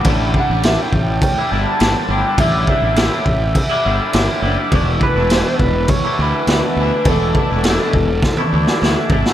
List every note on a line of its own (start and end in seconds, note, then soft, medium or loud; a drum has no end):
0.00 2.36 A5 medium
0.05 0.31 A1 loud
0.05 0.65 A2 medium
0.05 0.33 D3 medium
0.05 0.35 G3 medium
0.05 0.35 D4 medium
0.05 0.36 E4 loud
0.05 9.33 D5 medium
0.05 4.69 G5 medium
0.05 kick loud
0.05 crash medium
0.34 0.65 D3 medium
0.34 0.52 G3 medium
0.34 0.52 D4 medium
0.34 0.50 E4 medium
0.34 kick medium
0.40 0.67 F#5 loud
0.50 0.75 A1 loud
0.50 0.67 G3 medium
0.50 0.67 D4 medium
0.50 0.67 E4 medium
0.63 1.42 A2 loud
0.63 0.93 D3 medium
0.63 0.81 G3 loud
0.63 0.80 D4 medium
0.63 0.83 E5 loud
0.63 snare loud
0.63 crash medium
0.68 0.78 E4 loud
0.79 0.95 G3 medium
0.79 0.95 D4 medium
0.79 0.95 E4 medium
0.79 1.22 G5 loud
0.92 1.18 A1 medium
0.92 muted clean electric guitar stroke soft
0.92 kick medium
1.22 1.53 G5 loud
1.22 kick loud
1.22 crash medium
1.38 1.50 G3 medium
1.38 1.51 D4 medium
1.38 1.52 E4 medium
1.50 1.64 G1 medium
1.50 1.79 D3 medium
1.50 1.79 G3 medium
1.50 1.80 D4 medium
1.50 1.81 E4 medium
1.50 1.81 A5 loud
1.79 1.94 G1 loud
1.79 2.24 A2 loud
1.79 2.07 D3 loud
1.79 1.95 G3 loud
1.79 1.95 D4 loud
1.79 1.93 E4 loud
1.79 2.12 A5 loud
1.79 snare loud
1.79 crash medium
1.94 2.08 G3 medium
1.94 2.10 D4 medium
1.94 2.10 E4 medium
2.08 2.22 G1 medium
2.08 2.38 D3 medium
2.08 2.25 G3 medium
2.08 2.25 D4 medium
2.08 2.24 E4 medium
2.08 2.39 G5 loud
2.25 2.38 G3 medium
2.25 2.40 D4 medium
2.25 2.41 E4 medium
2.38 2.64 A1 loud
2.38 2.95 A2 medium
2.38 2.65 D3 loud
2.38 2.66 G3 medium
2.38 2.67 D4 loud
2.38 2.68 E4 loud
2.38 4.40 E5 medium
2.38 4.71 B5 medium
2.38 kick loud
2.38 crash medium
2.67 2.95 D3 medium
2.67 2.84 G3 medium
2.67 2.83 D4 medium
2.67 2.82 E4 medium
2.67 kick medium
2.82 3.08 A1 medium
2.82 2.95 G3 medium
2.82 2.97 D4 medium
2.82 2.97 E4 medium
2.96 3.41 A2 medium
2.96 3.24 D3 loud
2.96 3.12 G3 loud
2.96 3.11 D4 medium
2.96 3.11 E4 medium
2.96 snare loud
2.96 crash medium
3.11 3.25 G3 medium
3.11 3.26 D4 medium
3.11 3.26 E4 medium
3.25 3.52 A1 medium
3.25 muted clean electric guitar stroke medium
3.25 kick medium
3.55 kick loud
3.55 crash medium
3.70 3.85 G3 medium
3.70 3.86 D4 medium
3.70 3.87 E4 medium
3.85 3.98 G1 medium
3.85 4.13 D3 medium
3.85 4.12 G3 medium
3.85 4.15 D4 medium
3.85 4.15 E4 medium
4.12 4.27 G1 loud
4.12 4.57 A2 loud
4.12 4.41 D3 loud
4.12 4.28 G3 medium
4.12 4.27 D4 loud
4.12 4.26 E4 loud
4.12 snare loud
4.12 crash medium
4.27 4.41 G3 medium
4.27 4.42 D4 medium
4.27 4.43 E4 medium
4.42 4.56 F#1 loud
4.42 4.70 D3 medium
4.42 4.57 G3 medium
4.42 4.58 D4 medium
4.42 4.56 E4 medium
4.57 4.71 G3 medium
4.57 4.73 D4 medium
4.57 4.73 E4 medium
4.71 4.98 E1 loud
4.71 5.30 E2 loud
4.71 5.30 B2 medium
4.71 5.00 E3 loud
4.71 5.01 A3 medium
4.71 5.02 D4 loud
4.71 5.03 E4 loud
4.71 9.33 E5 medium
4.71 9.33 A5 medium
4.71 kick loud
4.71 crash medium
5.00 5.17 E3 medium
5.00 5.17 A3 medium
5.00 5.17 D4 medium
5.00 5.15 E4 medium
5.00 5.91 B4 loud
5.00 kick medium
5.15 5.41 E1 loud
5.15 5.31 E3 medium
5.15 5.31 A3 medium
5.15 5.32 D4 medium
5.15 5.33 E4 medium
5.30 6.08 E2 medium
5.30 5.75 B2 loud
5.30 5.47 E3 loud
5.30 5.47 A3 loud
5.30 5.45 D4 loud
5.30 5.45 E4 loud
5.30 snare loud
5.30 crash medium
5.46 5.59 E3 medium
5.46 5.60 A3 medium
5.46 5.60 D4 medium
5.46 5.61 E4 medium
5.59 5.85 E1 medium
5.59 muted clean electric guitar stroke medium
5.59 kick medium
5.88 6.23 C#5 loud
5.88 kick loud
5.88 crash medium
6.05 6.20 E3 medium
6.05 6.20 A3 medium
6.05 6.21 D4 medium
6.05 6.21 E4 medium
6.19 6.32 D2 loud
6.19 6.49 E3 medium
6.19 6.49 A3 medium
6.19 6.51 D4 medium
6.19 6.51 E4 medium
6.19 7.08 B4 loud
6.47 6.60 D2 medium
6.47 6.92 E2 loud
6.47 6.92 B2 loud
6.47 6.65 E3 loud
6.47 6.64 A3 loud
6.47 snare loud
6.47 crash soft
6.51 6.63 D4 loud
6.51 6.63 E4 loud
6.63 6.78 E3 medium
6.63 6.78 A3 medium
6.63 6.79 D4 medium
6.63 6.80 E4 medium
6.76 6.90 D2 loud
6.76 6.95 E3 medium
6.76 6.95 A3 medium
6.76 6.93 D4 medium
6.81 6.93 E4 loud
6.94 7.08 E3 medium
6.94 7.08 A3 medium
6.94 7.09 D4 medium
6.94 7.09 E4 medium
7.05 7.31 E1 loud
7.05 7.65 E2 loud
7.05 7.65 B2 loud
7.05 7.35 E3 medium
7.05 9.08 A4 medium
7.05 kick loud
7.05 crash medium
7.09 7.36 A3 medium
7.09 7.37 D4 loud
7.09 7.38 E4 loud
7.35 7.51 E3 medium
7.35 7.52 A3 medium
7.35 7.51 D4 medium
7.35 kick medium
7.39 7.49 E4 medium
7.50 7.77 E1 medium
7.50 7.66 E3 medium
7.50 7.67 A3 medium
7.50 7.67 D4 medium
7.50 7.67 E4 medium
7.64 8.09 E2 loud
7.64 8.09 B2 loud
7.64 7.81 E3 loud
7.64 snare loud
7.64 crash medium
7.68 7.80 A3 loud
7.68 7.79 D4 loud
7.68 7.79 E4 loud
7.80 7.94 E3 medium
7.80 7.94 A3 medium
7.80 7.95 D4 medium
7.80 7.94 E4 medium
7.93 8.19 E1 medium
7.93 muted clean electric guitar stroke soft
7.93 kick medium
8.23 kick loud
8.23 snare medium
8.37 8.50 E3 medium
8.37 8.51 A3 medium
8.37 8.53 D4 medium
8.37 8.53 E4 medium
8.37 high tom medium
8.52 8.65 D2 medium
8.52 8.81 E3 medium
8.52 8.82 A3 medium
8.52 8.82 D4 medium
8.52 8.82 E4 medium
8.67 snare medium
8.82 8.95 D2 loud
8.82 9.26 E2 loud
8.82 9.26 B2 loud
8.82 8.97 E3 loud
8.82 8.96 A3 loud
8.82 8.96 D4 loud
8.82 8.94 E4 loud
8.82 snare medium
8.95 9.09 E3 medium
8.95 9.10 A3 medium
8.95 9.11 D4 medium
8.95 9.11 E4 medium
9.09 9.23 G#1 loud
9.09 9.26 E3 medium
9.09 9.25 A3 medium
9.09 9.25 D4 medium
9.09 9.24 E4 loud
9.09 kick loud
9.25 9.33 E3 medium
9.25 9.33 A3 medium
9.25 9.33 D4 medium
9.25 9.33 E4 medium
9.25 snare medium